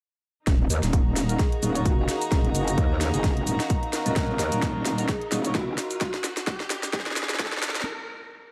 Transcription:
0.47 wobble bass D#1, string section D#4, analog synth pad D#4 A#4 D#5 F5, kick, snare, closed hi-hat, riser, shaker
0.70 wobble bass D#2, open hi-hat, shaker
0.80 wobble bass D#1, string section F#4, snare, closed hi-hat, shaker
0.89 string section A#5, kick
0.93 closed hi-hat, shaker
1.06 wobble bass D#1
1.16 snare, open hi-hat, shaker
1.29 horn section D#4 F4 F#4 A#4, closed hi-hat, shaker
1.39 vibraphone G#4, kick, snare, closed hi-hat, shaker
1.52 vibraphone G#4, closed hi-hat
1.62 wobble bass D#1, horn section D#4 F4 F#4 D#5, open hi-hat, shaker
1.75 horn section D#4 F4 F#4 C#5, closed hi-hat, shaker
1.85 wobble bass F1, vibraphone F#4, kick, closed hi-hat, shaker
1.98 vibraphone F#4
2.09 vibraphone G#4, snare, open hi-hat, shaker
2.21 closed hi-hat, shaker
2.32 wobble bass D#1, kick, snare, closed hi-hat, shaker
2.45 closed hi-hat
2.55 wobble bass F#1, open hi-hat, shaker
2.68 closed hi-hat, shaker
2.78 wobble bass D#2, kick, closed hi-hat, shaker
3.01 vibraphone G#4, snare, open hi-hat, shaker
3.14 wobble bass F#1, horn section D#4 F4 F#4 G#4, vibraphone G#4, closed hi-hat, shaker
3.24 kick, snare, closed hi-hat, shaker
3.37 wobble bass F1, closed hi-hat
3.47 wobble bass D#1, open hi-hat, shaker
3.60 snare, closed hi-hat, shaker
3.70 kick, closed hi-hat, shaker
3.83 closed hi-hat
3.93 horn section D#4 F4 F#4 A#4, snare, open hi-hat, shaker
4.06 wobble bass D#1, horn section D#4 F4 F#4 A#4, closed hi-hat, shaker
4.16 wobble bass D#1, kick, snare, closed hi-hat, shaker
4.39 wobble bass D#2, snare, open hi-hat, shaker
4.52 wobble bass D#1, closed hi-hat, shaker
4.62 kick, snare, closed hi-hat, shaker
4.75 wobble bass D#1
4.85 snare, open hi-hat, shaker
4.98 horn section D#4 F4 F#4 A#4, closed hi-hat, shaker
5.09 vibraphone G#4, kick, snare, closed hi-hat, shaker
5.21 vibraphone G#4, closed hi-hat
5.32 wobble bass D#1, horn section D#4 F4 F#4 D#5, snare, open hi-hat, shaker
5.45 horn section D#4 F4 F#4 C#5, closed hi-hat, shaker
5.55 wobble bass F1, vibraphone F#4, kick, snare, closed hi-hat, shaker
5.68 vibraphone F#4
5.78 snare, open hi-hat, shaker
5.91 vibraphone F#4, closed hi-hat, shaker
6.01 vibraphone F#4, kick, snare, closed hi-hat, shaker
6.14 snare, closed hi-hat
6.24 snare, open hi-hat, shaker
6.37 snare, closed hi-hat, shaker
6.47 kick, snare, closed hi-hat, shaker
6.60 snare
6.70 snare, open hi-hat, shaker
6.83 snare, closed hi-hat, shaker
6.93 kick, snare, closed hi-hat, shaker
7.00 snare
7.06 snare, closed hi-hat
7.11 snare
7.16 snare, open hi-hat, shaker
7.23 snare
7.29 snare, closed hi-hat, shaker
7.34 snare
7.39 kick, snare, closed hi-hat, shaker
7.46 snare
7.52 snare, closed hi-hat
7.57 snare
7.63 snare, open hi-hat, shaker
7.69 snare
7.75 snare, closed hi-hat, shaker
7.81 snare

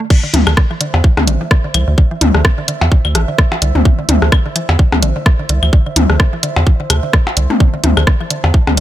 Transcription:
0.00 synth arpeggio sound A3
0.10 synth arpeggio sound D3, kick, crash
0.23 synth arpeggio sound D3
0.34 analog synth bass D2, synth arpeggio sound E3, closed hi-hat, mid tom
0.47 analog synth bass D2, synth arpeggio sound D3, ambient pad C5 E5, cross-stick, claves
0.57 synth arpeggio sound D3, kick, cross-stick
0.71 synth arpeggio sound E3
0.81 synth arpeggio sound D3, closed hi-hat
0.94 analog synth bass E2, synth arpeggio sound D3, percussion blips
1.04 synth arpeggio sound E3, kick
1.17 analog synth bass D2, synth arpeggio sound D3, cross-stick, mid tom, percussion blips
1.27 analog synth bass A1, synth arpeggio sound D3, closed hi-hat
1.41 synth arpeggio sound E3
1.51 synth arpeggio sound D3, kick, cross-stick
1.64 synth arpeggio sound D3
1.74 analog synth bass C2, synth arpeggio sound E3, closed hi-hat, claves
1.88 analog synth bass D2, synth arpeggio sound D3
1.98 synth arpeggio sound D3, kick
2.11 synth arpeggio sound E3
2.21 analog synth bass D2, synth arpeggio sound D3, closed hi-hat, mid tom
2.35 analog synth bass D2, synth arpeggio sound D3, cross-stick
2.45 synth arpeggio sound E3, kick, cross-stick
2.58 synth arpeggio sound D3
2.68 synth arpeggio sound D3, closed hi-hat
2.81 analog synth bass E2, synth arpeggio sound E3, percussion blips
2.91 synth arpeggio sound D3, kick
3.05 analog synth bass D2, synth arpeggio sound D3, claves
3.15 analog synth bass A1, synth arpeggio sound E3, cross-stick, closed hi-hat
3.28 synth arpeggio sound D3
3.38 synth arpeggio sound D3, kick, cross-stick
3.52 synth arpeggio sound E3, percussion blips
3.62 analog synth bass C2, synth arpeggio sound D3, closed hi-hat
3.75 analog synth bass D2, synth arpeggio sound D3, mid tom
3.85 synth arpeggio sound E3, kick
3.99 synth arpeggio sound D3
4.09 analog synth bass D2, synth arpeggio sound D3, closed hi-hat, mid tom
4.22 analog synth bass D2, synth arpeggio sound E3, cross-stick
4.32 synth arpeggio sound D3, kick, cross-stick, claves
4.46 synth arpeggio sound D3
4.56 synth arpeggio sound E3, closed hi-hat
4.69 analog synth bass E2, synth arpeggio sound D3, percussion blips
4.79 synth arpeggio sound D3, kick
4.92 analog synth bass D2, synth arpeggio sound E3, cross-stick, mid tom, percussion blips
5.02 analog synth bass A1, synth arpeggio sound D3, closed hi-hat
5.16 synth arpeggio sound D3
5.26 synth arpeggio sound E3, kick, cross-stick
5.39 synth arpeggio sound D3
5.49 analog synth bass C2, synth arpeggio sound D3, closed hi-hat
5.63 analog synth bass D2, synth arpeggio sound E3, claves
5.73 synth arpeggio sound D3, kick
5.86 synth arpeggio sound D3
5.96 analog synth bass D2, synth arpeggio sound E3, closed hi-hat, mid tom
6.09 analog synth bass D2, synth arpeggio sound D3, cross-stick
6.20 synth arpeggio sound D3, kick, cross-stick
6.33 synth arpeggio sound E3
6.43 synth arpeggio sound D3, closed hi-hat
6.56 analog synth bass E2, synth arpeggio sound D3, percussion blips
6.67 synth arpeggio sound E3, kick
6.80 synth arpeggio sound D3
6.90 analog synth bass D2, synth arpeggio sound C3, cross-stick, closed hi-hat, claves
7.03 synth arpeggio sound D3
7.13 synth arpeggio sound D3, kick, cross-stick
7.27 percussion blips
7.37 analog synth bass C2, synth arpeggio sound D3, closed hi-hat
7.50 synth arpeggio sound A3, mid tom
7.60 synth arpeggio sound D3, kick
7.74 synth arpeggio sound D3
7.84 analog synth bass D2, synth arpeggio sound E3, closed hi-hat, mid tom
7.97 analog synth bass D2, synth arpeggio sound D3, ambient pad A5, cross-stick, claves
8.07 synth arpeggio sound D3, kick, cross-stick
8.20 synth arpeggio sound E3
8.30 synth arpeggio sound D3, closed hi-hat
8.44 analog synth bass E2, synth arpeggio sound D3, percussion blips
8.54 synth arpeggio sound E3, kick
8.67 analog synth bass D2, synth arpeggio sound D3, cross-stick, mid tom, percussion blips

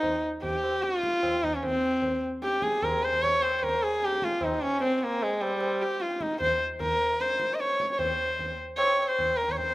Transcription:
Already playing: sarangi D#4
0.03 tabla tin, tabla ge
0.43 sarangi G4, tabla tin, tabla ge
0.64 tabla na
0.83 sarangi F4, tabla te
0.93 tabla te
1.03 tabla ke
1.13 tabla te
1.23 tabla na, tabla ge
1.43 sarangi D#4, tabla ge
1.56 sarangi C#4
1.63 sarangi C4, tabla tin, tabla ge
2.02 tabla tin, tabla ge
2.42 sarangi G4, tabla te
2.52 tabla te
2.62 sarangi G#4, tabla ke
2.72 tabla te
2.82 sarangi A#4, tabla na, tabla ge
3.03 sarangi C5, tabla te
3.13 tabla ge
3.23 sarangi C#5, tabla tin, tabla ge
3.42 sarangi C5, tabla na
3.58 sarangi C5
3.63 sarangi A#4, tabla tin, tabla ge
3.83 sarangi G#4
4.02 sarangi G4, tabla te
4.12 tabla te
4.22 sarangi F4, tabla ke
4.31 tabla te
4.41 sarangi D#4, tabla na, tabla ge
4.61 sarangi C#4, tabla ge
4.81 sarangi C4, tabla tin
4.98 sarangi C4, tabla na
5.03 sarangi A#3
5.21 sarangi G#3, tabla tin
5.41 sarangi G3, tabla na
5.61 tabla na
5.82 sarangi G4
6.00 sarangi F4, tabla te
6.10 tabla te
6.21 sarangi D#4, tabla ke
6.31 tabla te
6.41 sarangi C5, tabla tin, tabla ge
6.80 sarangi A#4, tabla tin, tabla ge
7.20 sarangi C5, tabla te
7.30 tabla te
7.40 tabla ke
7.50 tabla te
7.54 sarangi D#5
7.60 sarangi C#5, tabla te
7.70 tabla te
7.80 tabla ke
7.90 sarangi C#5, tabla te
7.98 sarangi C5, tabla tin, tabla ge
8.39 tabla tin, tabla ge
8.78 sarangi C#5, tabla na
8.99 sarangi C#5, tabla na
9.08 sarangi C5
9.19 tabla na, tabla ge
9.36 sarangi A#4, tabla te
9.48 sarangi C#5, tabla ge
9.57 sarangi C5, tabla tin, tabla ge

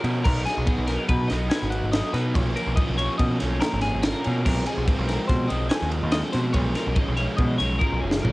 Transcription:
Already playing: overdriven electric guitar B2, clean electric guitar A#4
0.04 picked electric bass B2, overdriven electric guitar F3 G#3 C#4, ride
0.24 picked electric bass B1, overdriven electric guitar B2 F#3 B3 D#4, clean electric guitar A#4, kick, crash
0.45 overdriven electric guitar F#3 B3 D#4, clean electric guitar G#4, snare, ride
0.58 picked electric bass B1
0.66 overdriven electric guitar B2 F#3 B3 D#4, kick, ride
0.78 picked electric bass B1
0.87 overdriven electric guitar F#3 B3 D#4, clean electric guitar A#4, snare, ride
1.09 picked electric bass B2, clean electric guitar B4, kick, ride
1.28 picked electric bass B1, overdriven electric guitar D#4, clean electric guitar D#5, snare, ride
1.32 overdriven electric guitar F#3 B3
1.50 overdriven electric guitar B2 F#3 B3 D#4, clean electric guitar G#5, snare, ride
1.63 picked electric bass G#1
1.70 clean electric guitar F#5, ride
1.83 picked electric bass G#1
1.92 overdriven electric guitar B2 F#3, clean electric guitar D#5, snare, ride
1.96 overdriven electric guitar B3 D#4
2.13 picked electric bass B2, overdriven electric guitar F#3 B3 D#4, clean electric guitar B4, snare, ride
2.34 picked electric bass B1, overdriven electric guitar A#2 F3 A#3 C#4, clean electric guitar C#5, kick, ride
2.56 overdriven electric guitar F3 A#3 C#4, clean electric guitar A#4, ride
2.67 picked electric bass B1
2.76 overdriven electric guitar A#2 F3 A#3 C#4, clean electric guitar D#5, kick, ride
2.89 picked electric bass B1
2.98 overdriven electric guitar F3 A#3 C#4, clean electric guitar C#5, ride
3.18 picked electric bass B2, clean electric guitar D#5, kick, ride
3.40 picked electric bass B1, overdriven electric guitar F3 A#3 C#4, clean electric guitar C#5, snare, ride
3.61 overdriven electric guitar A#2 F3 A#3 C#4, clean electric guitar A#4, snare, ride
3.73 picked electric bass G#1
3.81 clean electric guitar G#4, snare, ride
3.94 picked electric bass G#1
4.02 overdriven electric guitar A#2 F3 A#3 C#4, clean electric guitar A#4, snare, ride
4.24 picked electric bass B2, overdriven electric guitar F3 A#3 C#4, ride
4.46 picked electric bass B1, overdriven electric guitar F2 C3 F3 G#3 C4, clean electric guitar A#4, kick, crash
4.66 overdriven electric guitar F3 G#3 C4, clean electric guitar G#4, ride
4.77 picked electric bass B1
4.87 overdriven electric guitar C3 F3 G#3 C4, kick, ride
4.99 picked electric bass B1
5.07 overdriven electric guitar F3 G#3 C4, clean electric guitar A#4, snare, ride
5.28 picked electric bass B2, clean electric guitar C5, kick, snare, ride
5.48 picked electric bass B1, overdriven electric guitar F3 G#3 C4, clean electric guitar D#5, ride
5.69 overdriven electric guitar F2 C3 F3 G#3 C4, clean electric guitar G#5, snare, ride
5.82 picked electric bass D#2
5.90 clean electric guitar F5, ride
6.03 picked electric bass D#2
6.11 overdriven electric guitar F2 C3 F3 G#3 C4, clean electric guitar D#5, snare, ride
6.33 picked electric bass B2, overdriven electric guitar F3 G#3 C4, clean electric guitar C5, snare, ride
6.53 picked electric bass B1, overdriven electric guitar B2 F3 G#3 C#4, clean electric guitar C#5, kick, ride
6.74 overdriven electric guitar F3 G#3 C#4, clean electric guitar A#4, snare, ride
6.87 picked electric bass B1
6.95 overdriven electric guitar B2 F3 G#3 C#4, clean electric guitar D#5, kick, ride
7.08 picked electric bass B1
7.17 overdriven electric guitar F3 G#3 C#4, clean electric guitar C#5, ride
7.37 picked electric bass B2, clean electric guitar D#5, kick, ride
7.58 picked electric bass B1, overdriven electric guitar F3 G#3 C#4, clean electric guitar C#5, ride
7.79 overdriven electric guitar B2 F3 G#3 C#4, clean electric guitar A#4, kick
7.92 picked electric bass B1
8.01 picked electric bass F#1, clean electric guitar G#4
8.11 snare
8.22 picked electric bass G#1, overdriven electric guitar B2 F3 G#3 C#4, clean electric guitar A#4, mid tom

